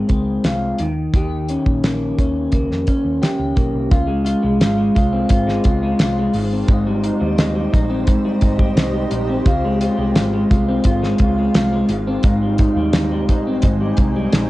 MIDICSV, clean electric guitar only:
0, 0, Header, 1, 2, 480
1, 0, Start_track
1, 0, Key_signature, -4, "major"
1, 0, Tempo, 693642
1, 790, Time_signature, 4, 2, 24, 8
1, 10033, End_track
2, 0, Start_track
2, 0, Title_t, "Clean electric guitar"
2, 0, Program_c, 0, 27
2, 0, Note_on_c, 0, 56, 60
2, 0, Note_on_c, 0, 65, 66
2, 61, Note_on_c, 0, 60, 52
2, 305, Note_off_c, 0, 65, 0
2, 313, Note_on_c, 0, 65, 60
2, 552, Note_on_c, 0, 51, 72
2, 594, Note_off_c, 0, 60, 0
2, 597, Note_off_c, 0, 56, 0
2, 600, Note_off_c, 0, 65, 0
2, 786, Note_off_c, 0, 51, 0
2, 794, Note_on_c, 0, 51, 75
2, 799, Note_on_c, 0, 67, 69
2, 1036, Note_on_c, 0, 61, 57
2, 1279, Note_on_c, 0, 58, 58
2, 1515, Note_off_c, 0, 61, 0
2, 1518, Note_on_c, 0, 61, 55
2, 1743, Note_off_c, 0, 58, 0
2, 1751, Note_on_c, 0, 58, 55
2, 1989, Note_off_c, 0, 61, 0
2, 1992, Note_on_c, 0, 61, 57
2, 2219, Note_off_c, 0, 67, 0
2, 2227, Note_on_c, 0, 67, 65
2, 2455, Note_off_c, 0, 58, 0
2, 2463, Note_on_c, 0, 58, 56
2, 2706, Note_off_c, 0, 67, 0
2, 2708, Note_on_c, 0, 65, 69
2, 2712, Note_off_c, 0, 51, 0
2, 2755, Note_off_c, 0, 58, 0
2, 2818, Note_on_c, 0, 56, 56
2, 2930, Note_off_c, 0, 65, 0
2, 2938, Note_on_c, 0, 65, 67
2, 3062, Note_off_c, 0, 56, 0
2, 3065, Note_on_c, 0, 56, 57
2, 3177, Note_off_c, 0, 65, 0
2, 3186, Note_on_c, 0, 65, 61
2, 3300, Note_off_c, 0, 56, 0
2, 3303, Note_on_c, 0, 56, 59
2, 3418, Note_off_c, 0, 65, 0
2, 3427, Note_on_c, 0, 65, 73
2, 3544, Note_off_c, 0, 61, 0
2, 3546, Note_on_c, 0, 60, 61
2, 3666, Note_off_c, 0, 65, 0
2, 3675, Note_on_c, 0, 65, 65
2, 3784, Note_off_c, 0, 56, 0
2, 3787, Note_on_c, 0, 56, 65
2, 3899, Note_off_c, 0, 65, 0
2, 3908, Note_on_c, 0, 65, 69
2, 4031, Note_off_c, 0, 56, 0
2, 4034, Note_on_c, 0, 56, 66
2, 4148, Note_off_c, 0, 65, 0
2, 4159, Note_on_c, 0, 65, 74
2, 4279, Note_off_c, 0, 56, 0
2, 4282, Note_on_c, 0, 56, 61
2, 4394, Note_on_c, 0, 44, 89
2, 4442, Note_off_c, 0, 65, 0
2, 4512, Note_off_c, 0, 60, 0
2, 4515, Note_on_c, 0, 60, 57
2, 4624, Note_off_c, 0, 44, 0
2, 4632, Note_on_c, 0, 44, 85
2, 4638, Note_on_c, 0, 63, 72
2, 4748, Note_off_c, 0, 56, 0
2, 4750, Note_on_c, 0, 55, 60
2, 4860, Note_off_c, 0, 63, 0
2, 4868, Note_on_c, 0, 63, 68
2, 4977, Note_off_c, 0, 55, 0
2, 4985, Note_on_c, 0, 55, 67
2, 5103, Note_off_c, 0, 63, 0
2, 5111, Note_on_c, 0, 63, 64
2, 5217, Note_off_c, 0, 55, 0
2, 5226, Note_on_c, 0, 55, 59
2, 5339, Note_off_c, 0, 63, 0
2, 5347, Note_on_c, 0, 63, 71
2, 5462, Note_off_c, 0, 60, 0
2, 5465, Note_on_c, 0, 60, 67
2, 5576, Note_off_c, 0, 44, 0
2, 5581, Note_off_c, 0, 63, 0
2, 5584, Note_on_c, 0, 44, 85
2, 5589, Note_on_c, 0, 63, 64
2, 5702, Note_off_c, 0, 55, 0
2, 5710, Note_on_c, 0, 55, 70
2, 5813, Note_off_c, 0, 63, 0
2, 5821, Note_on_c, 0, 63, 68
2, 5935, Note_off_c, 0, 55, 0
2, 5944, Note_on_c, 0, 55, 58
2, 6058, Note_off_c, 0, 63, 0
2, 6066, Note_on_c, 0, 63, 74
2, 6177, Note_off_c, 0, 55, 0
2, 6185, Note_on_c, 0, 55, 62
2, 6297, Note_off_c, 0, 63, 0
2, 6305, Note_on_c, 0, 63, 65
2, 6428, Note_off_c, 0, 60, 0
2, 6431, Note_on_c, 0, 60, 61
2, 6547, Note_off_c, 0, 63, 0
2, 6554, Note_on_c, 0, 65, 79
2, 6594, Note_off_c, 0, 44, 0
2, 6595, Note_off_c, 0, 55, 0
2, 6675, Note_on_c, 0, 56, 58
2, 6779, Note_off_c, 0, 65, 0
2, 6787, Note_on_c, 0, 65, 68
2, 6903, Note_off_c, 0, 56, 0
2, 6905, Note_on_c, 0, 56, 62
2, 7022, Note_off_c, 0, 65, 0
2, 7030, Note_on_c, 0, 65, 64
2, 7148, Note_off_c, 0, 56, 0
2, 7151, Note_on_c, 0, 56, 59
2, 7261, Note_off_c, 0, 65, 0
2, 7270, Note_on_c, 0, 65, 71
2, 7391, Note_off_c, 0, 60, 0
2, 7394, Note_on_c, 0, 60, 62
2, 7508, Note_off_c, 0, 65, 0
2, 7516, Note_on_c, 0, 65, 74
2, 7628, Note_off_c, 0, 56, 0
2, 7631, Note_on_c, 0, 56, 69
2, 7753, Note_off_c, 0, 65, 0
2, 7761, Note_on_c, 0, 65, 67
2, 7875, Note_off_c, 0, 56, 0
2, 7878, Note_on_c, 0, 56, 62
2, 7989, Note_off_c, 0, 65, 0
2, 7997, Note_on_c, 0, 65, 70
2, 8116, Note_off_c, 0, 56, 0
2, 8118, Note_on_c, 0, 56, 64
2, 8237, Note_on_c, 0, 44, 79
2, 8282, Note_off_c, 0, 65, 0
2, 8353, Note_off_c, 0, 60, 0
2, 8355, Note_on_c, 0, 60, 66
2, 8464, Note_off_c, 0, 44, 0
2, 8473, Note_on_c, 0, 44, 90
2, 8476, Note_on_c, 0, 63, 73
2, 8593, Note_off_c, 0, 56, 0
2, 8596, Note_on_c, 0, 55, 59
2, 8711, Note_off_c, 0, 63, 0
2, 8720, Note_on_c, 0, 63, 71
2, 8828, Note_off_c, 0, 55, 0
2, 8836, Note_on_c, 0, 55, 61
2, 8953, Note_off_c, 0, 63, 0
2, 8961, Note_on_c, 0, 63, 67
2, 9070, Note_off_c, 0, 55, 0
2, 9079, Note_on_c, 0, 55, 58
2, 9192, Note_off_c, 0, 63, 0
2, 9200, Note_on_c, 0, 63, 72
2, 9319, Note_off_c, 0, 60, 0
2, 9322, Note_on_c, 0, 60, 61
2, 9427, Note_off_c, 0, 44, 0
2, 9430, Note_off_c, 0, 63, 0
2, 9435, Note_on_c, 0, 44, 73
2, 9439, Note_on_c, 0, 63, 68
2, 9550, Note_off_c, 0, 55, 0
2, 9558, Note_on_c, 0, 55, 70
2, 9675, Note_off_c, 0, 63, 0
2, 9685, Note_on_c, 0, 63, 65
2, 9793, Note_off_c, 0, 55, 0
2, 9802, Note_on_c, 0, 55, 69
2, 9909, Note_off_c, 0, 63, 0
2, 9917, Note_on_c, 0, 63, 67
2, 10024, Note_off_c, 0, 55, 0
2, 10033, Note_off_c, 0, 44, 0
2, 10033, Note_off_c, 0, 60, 0
2, 10033, Note_off_c, 0, 63, 0
2, 10033, End_track
0, 0, End_of_file